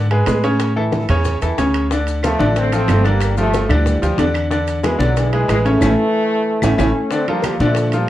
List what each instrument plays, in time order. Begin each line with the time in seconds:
Already playing: upright bass G#2
0.11 grand piano G#3 G#4 B4, high conga, high timbale
0.27 upright bass A2, grand piano G#3 G#4 B4, high bongo, low bongo, high conga, high timbale, low timbale, maracas
0.44 grand piano C#3 C#4 C#5, high conga, high timbale, maracas
0.60 high bongo, high timbale, maracas
0.76 grand piano E3 E4 A4, high bongo, high conga
0.92 high bongo, high conga, high timbale, maracas
1.09 upright bass E2, grand piano C#3 C#4 C#5, high bongo, high conga, low conga, high timbale, maracas
1.25 high bongo, high conga, low conga, maracas
1.42 upright bass E2, grand piano E3 E4 A4, high conga, high timbale, maracas
1.58 upright bass D2, grand piano C#3 C#4 C#5, high bongo, low bongo, high conga, high timbale, maracas
1.74 high bongo, high timbale, maracas
1.91 grand piano D3 D4 D5, high bongo, high conga, maracas
2.06 high conga, high timbale, maracas
2.23 grand piano F3 F4 A4, trombone section F3 A3, high bongo, high conga, high timbale, claves, maracas
2.39 upright bass A1, grand piano D3 D4 D5, high conga, maracas
2.56 trombone section A3 C4, high bongo, high timbale, maracas
2.72 grand piano F3 F4 A4, trombone section A3 C4, high conga, high timbale, maracas
2.88 upright bass G1, grand piano F3 F4 A4, high bongo, low bongo, high timbale, low timbale, claves, maracas
3.04 grand piano D3 D4 D5, trombone section G3 A#3, high conga, high timbale, maracas
3.20 high bongo, high conga, high timbale, claves, maracas
3.37 grand piano F3 F4 G4, trombone section F3 A3, high bongo, high conga, maracas
3.53 high bongo, high conga, high timbale, maracas
3.69 upright bass D2, grand piano D3 D4 D5, trombone section E3 G3, high conga, low conga, high timbale, claves, maracas
3.86 high bongo, high conga, low conga, maracas
4.02 upright bass D2, grand piano F3 F4 G4, high conga, high timbale, maracas
4.18 upright bass E2, grand piano D3 D4 D5, high bongo, low bongo, high conga, high timbale, low timbale, maracas
4.35 high bongo, high timbale, claves, maracas
4.51 grand piano D3 D4 D5, high bongo, high conga, maracas
4.67 high conga, high timbale, maracas
4.83 trombone section B2 E3, grand piano G#3 G#4 B4, high bongo, high conga, high timbale, claves, maracas
4.99 upright bass B1, grand piano D3 D4 D5, trombone section D3 F#3, high conga, maracas
5.17 trombone section E3 G#3, high bongo, high conga, high timbale, maracas
5.33 grand piano G#3 G#4 B4, high conga, high timbale
5.48 upright bass A1, trombone section E3 G#3, grand piano G#3 G#4 B4, high bongo, low bongo, high conga, high timbale, claves, maracas
5.65 grand piano C#3 C#4 C#5, trombone section E3 A3, high conga, high timbale, maracas
5.81 upright bass A1, grand piano A3 C#4 E4, low bongo, high conga, high timbale, claves, maracas
6.62 upright bass A1, grand piano A3 C#4 E4, low bongo, high conga, high timbale, claves, maracas
6.78 upright bass A1, grand piano A3 C#4 E4, trombone section A3 C#4, low bongo, high conga, high timbale, claves, maracas
7.10 grand piano D3 D4 D5, trombone section A3 C4, high bongo, high conga, maracas
7.27 grand piano F3 F4 A4, trombone section G3 A#3, high conga, high timbale
7.42 high bongo, high conga, high timbale, claves, maracas
7.59 upright bass A#2, grand piano D3 D4 D5, trombone section F3 A3, high conga, maracas
7.75 high bongo, high conga, high timbale, maracas
7.92 grand piano F3 F4 A4, trombone section G3 A#3, high conga, high timbale, maracas